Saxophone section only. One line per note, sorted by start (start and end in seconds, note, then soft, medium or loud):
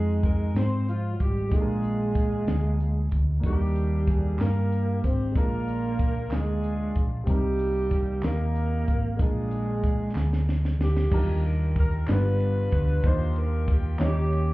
0.00 0.52 C4 medium
0.00 0.52 D#4 medium
0.00 0.20 G#4 medium
0.25 0.56 A#4 medium
0.58 0.89 C5 loud
0.89 1.18 F4 medium
1.21 1.52 G4 medium
1.54 3.09 D4 medium
1.54 3.09 F4 medium
1.54 3.13 G#4 medium
3.45 4.36 A#3 medium
3.45 4.36 D4 medium
3.45 4.04 G4 medium
4.09 4.40 G#4 medium
4.40 5.32 D4 medium
4.40 5.32 G4 medium
4.40 5.00 A#4 medium
5.04 5.36 C5 medium
5.36 6.28 D4 medium
5.36 6.28 F4 medium
5.36 6.28 A#4 medium
6.33 7.24 D4 medium
6.33 7.24 F4 medium
6.33 7.04 G#4 medium
7.28 8.20 A#3 medium
7.28 8.20 D#4 medium
7.28 8.20 G4 medium
8.24 9.04 D#4 medium
8.24 9.04 G4 medium
8.24 9.04 A#4 medium
9.21 10.44 D4 soft
9.21 10.44 F4 soft
9.21 10.49 G#4 medium
10.82 11.73 A#3 medium
10.82 11.73 D4 medium
10.82 11.41 G4 medium
11.45 11.74 A#4 medium
11.79 12.07 A#4 medium
12.11 13.01 D4 medium
12.11 13.01 F4 medium
12.11 13.05 B4 medium
13.06 13.97 F4 medium
13.06 13.70 G4 medium
13.06 13.37 C5 loud
13.38 13.69 A#4 medium
13.71 14.02 G4 medium
14.02 14.54 A#3 medium
14.02 14.54 C#4 medium
14.02 14.54 G4 medium